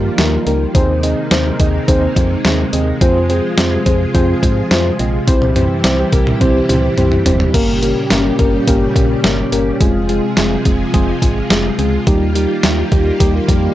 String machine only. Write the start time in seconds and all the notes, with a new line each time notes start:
Already playing: D#3 F3 G3 A#3 F4
0.75 C3 G#3 A#3 D#4
3.01 C3 F3 F4 G#4
5.28 E3 G3 E4 G4
7.54 A#2 C#3 G3 C#4 G4
9.81 C3 F3 G#3 F4 G#4
12.07 D#3 G3 A#3 G4